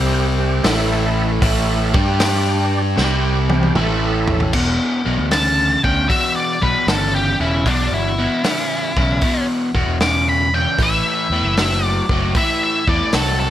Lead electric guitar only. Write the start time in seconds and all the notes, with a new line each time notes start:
5.32 A5
5.84 G5
6.09 E5
6.36 D5
6.63 B4
6.89 A4
7.15 G4
7.41 E4
7.68 D4
7.94 E4
10.02 D6
10.29 B5
10.55 G5
10.83 E5
11.85 D5
12.37 E5
12.64 E5
12.89 D5
13.14 A4
13.40 A4